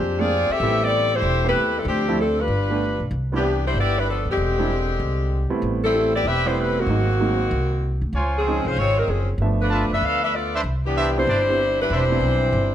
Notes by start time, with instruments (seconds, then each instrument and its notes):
Already playing: upright bass F2, saxophone section F3 C4 D4 G4
0.18 grand piano G#3 A#3 C4 D4 G#4, saxophone section C4 F4 G#4 D5
0.49 saxophone section C4 G4 A4 E5, muted upright bass stroke
0.60 upright bass A1, grand piano G3 A3 B3 C4 E4
0.84 saxophone section C4 G4 A4 D5
1.14 saxophone section A3 E4 G4 C5
1.22 upright bass E1
1.44 grand piano G3 A3 B3 C4 G4, saxophone section A3 E4 G4 B4
1.54 upright bass D#2
1.78 saxophone section G3 C4 E4 A4
1.85 upright bass D2, saxophone section F3 C4 D4 G4
2.08 grand piano F3 A3 C4 D4 E4
2.20 saxophone section F3 C4 D4 A4
2.40 saxophone section G3 D4 F4 B4
2.48 upright bass G1
2.70 grand piano G3 A3 B3 D4 G4
3.00 upright bass B1
3.11 upright bass C2
3.32 saxophone section E3 B3 D4 G4, grand piano G3 B3 C4 D4 E4
3.66 saxophone section G3 D4 E4 C5
3.74 upright bass G1
3.79 saxophone section B3 E4 G4 D5
3.98 saxophone section G3 D4 E4 B4
4.09 saxophone section F3 B3 D4 A4
4.25 upright bass D#2
4.30 saxophone section D3 G#3 C4 G4
4.37 upright bass E1
4.59 grand piano G3 G#3 C4 D4 E4
5.00 upright bass C2
5.50 grand piano G3 A3 B3 C4 E4, muted upright bass stroke
5.62 upright bass A1
5.83 saxophone section G3 C4 E4 A4
5.94 grand piano G3 A3 B3 C4 E4
6.15 saxophone section B3 E4 G4 D5
6.24 upright bass E1, saxophone section C4 G4 B4 E5
6.45 grand piano G3 A3 B3 C4 E4, saxophone section G3 B3 E4 C5
6.59 saxophone section G3 C4 E4 B4
6.80 saxophone section D#3 A#3 C4 F#4
6.87 upright bass G#1, grand piano F#3 G#3 A#3 C4 D#4
7.20 grand piano F#3 G#3 A#3 C4 D#4
7.51 upright bass C2
8.02 upright bass D2
8.13 upright bass C#2, trumpet section F4 C5 C#5 G#5
8.37 saxophone section F3 C4 C#4 G#4
8.47 grand piano F3 G#3 C4 C#4 D#4
8.65 upright bass C2, saxophone section G#3 C#4 F4 C5
8.76 upright bass G#1, saxophone section G#3 C4 F4 C#5
8.97 saxophone section G3 C4 D#4 A#4
9.08 upright bass F#1, saxophone section F3 C4 C#4 G#4
9.38 upright bass G1, grand piano F3 A3 B3 D4
9.42 grand piano E5
9.60 saxophone section A3 D4 F4 B4
9.71 trumpet section F4 B4 E5 A5
9.90 upright bass F#1, saxophone section D4 B4 E5
9.94 saxophone section A4
10.01 upright bass D2, saxophone section D4 A4 B4 F5
10.24 saxophone section D4 A4 B4 E5
10.35 saxophone section B3 F4 A4 D5
10.54 trumpet section D4 B4 C5 E5
10.64 upright bass C2
10.86 saxophone section E3 B3 D4 G4
10.96 trumpet section D4 B4 C5 E5
11.17 grand piano G3 B3 C4 D4 E4, saxophone section G3 D4 E4 C5
11.27 upright bass G1, trumpet section D4 B4 C5 D5
11.49 grand piano G3 B3 C4 D4 E4
11.81 saxophone section G3 D4 E4 B4
11.90 upright bass E1, trombone section E3 G3 C4, saxophone section G3 D4 E4 C5, trumpet section D4 B4 C5 E5
12.10 grand piano G3 B3 C4 D4 E4
12.21 upright bass B1
12.53 upright bass G1